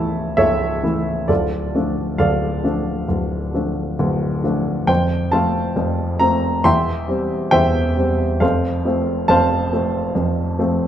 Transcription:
Already playing: C#1 C#2 E3 A3 E4 C#5 E5 A5
0.37 C#1 C#2 A4 C#5 E5
0.83 E3 A3 E4
1.28 D1 D2 F4 A4 D5
1.75 F3 A3 D4
2.18 D1 D2 A4 D5 F5
2.64 F3 A3 D4
3.08 D1 D2
3.54 F3 A3 D4
3.99 D1 D2
4.44 F3 A3 D4
4.87 F1 F2 C5 G5
5.32 F3 A3 C4 C5 F5 A5
5.76 F1 F2
6.20 F3 A3 C4 A#5
6.64 E1 E2 E5 G5 C6
7.08 G3 C4
7.51 E1 E2 C5 E5 G5
7.97 G3 C4
8.40 F1 F2 A4 C5 F5
8.85 F3 A3 C4
9.28 F1 F2 C5 F5 A5
9.73 F3 A3 C4
10.15 F1 F2
10.59 F3 A3 C4

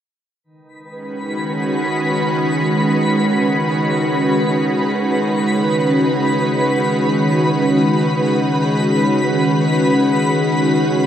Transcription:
0.44 C#3 D#3 G#3 B4 B5
0.81 G#3 C#4
0.93 F#4 B4

